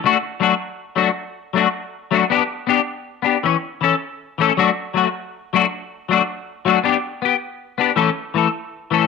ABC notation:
X:1
M:12/8
L:1/8
Q:3/8=106
K:D
V:1 name="Clean electric guitar"
[A,DF] z [F,A,DF] z2 [F,A,DF] z2 [F,A,DF] z2 [F,A,DF] | [B,DG] z [B,DG] z2 [B,DG] [E,C] z [E,CA] z2 [E,A,CA] | [F,A,DF] z [F,A,F] z2 [F,A,DF] z2 [F,A,DF] z2 [F,A,DF] | [B,DG] z [B,G] z2 [B,DG] [E,A,CA] z [E,A,A] z2 [E,A,CA] |]